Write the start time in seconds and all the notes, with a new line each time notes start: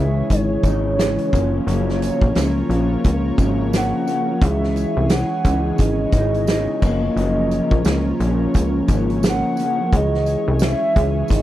Already playing: C#2 C#3 E3 G#3 C#4 G#4 C#5 E5
0.30 G#1 C#5, kick, closed hi-hat, tambourine
0.63 G#1 C#3 E3 G#3 D#4, kick, closed hi-hat, tambourine
0.97 C#3 E3 G#3 D#4, snare, closed hi-hat
1.01 tambourine
1.18 closed hi-hat
1.31 F#1 C#3 F3 A#3 C#4 A#4 C#5, kick, closed hi-hat
1.35 tambourine
1.52 F3 A#3 C#4
1.66 F#1 F#2 C#3 F3 A#3 C#4 C#5, closed hi-hat, tambourine
1.89 snare
2.02 closed hi-hat, tambourine
2.21 A#1, kick
2.35 C#2, snare, closed hi-hat, tambourine
2.69 A#1 C#3 F3 A#3 C#4, closed hi-hat
3.04 C#2, kick, closed hi-hat, tambourine
3.38 G#1 C#3 F3 A#3, kick, closed hi-hat, tambourine
3.42 C#4
3.72 C#3 F3 A#3 C#4, snare, closed hi-hat, tambourine
3.77 F#5
4.06 C#3 F3 A#3 C#4, closed hi-hat, tambourine
4.28 F3 A#3 C#4
4.41 C#2 E3 G#3 C#4 G#4 C#5 E5, kick, closed hi-hat, tambourine
4.64 snare
4.76 closed hi-hat, tambourine
4.97 C2
5.09 F#5, snare, closed hi-hat, tambourine
5.45 C#2 C#3 E3 G#3 D#4, kick, closed hi-hat, tambourine
5.78 G#1 D#5, kick, closed hi-hat, tambourine
6.12 G#1 C#3 E3, kick, closed hi-hat, tambourine
6.17 G#3 D#4
6.34 closed hi-hat
6.47 C#3 E3 G#3 D#4, snare, closed hi-hat, tambourine
6.82 F#1 C#3 F3 A#3 C#4 A#4, kick, tambourine, crash
7.02 F3 A#3 C#4
7.16 F#1 F#2 C#3 F3 A#3 C#4 D#5, closed hi-hat
7.51 closed hi-hat, tambourine
7.71 A#1, kick
7.85 C#2, snare, closed hi-hat, tambourine
8.20 A#1 C#3 F3 A#3 C#4, closed hi-hat
8.54 C#2, kick, closed hi-hat, tambourine
8.88 G#1 C#3 F3 A#3 C#4, kick, closed hi-hat, tambourine
9.10 closed hi-hat
9.23 C#3 F3 A#3 C#4, snare, closed hi-hat, tambourine
9.28 F#5
9.57 C#3 F3 A#3 C#4, closed hi-hat, tambourine
9.79 F3 A#3 C#4
9.93 C#2 E3 G#3 C#4 G#4 D#5, kick, closed hi-hat
10.14 snare
10.26 closed hi-hat, tambourine
10.48 C2
10.59 snare, closed hi-hat, tambourine
10.65 E5
10.94 C#2 C#3 E3 G#3, kick, closed hi-hat
11.28 G#1, kick, closed hi-hat, tambourine
11.35 D#5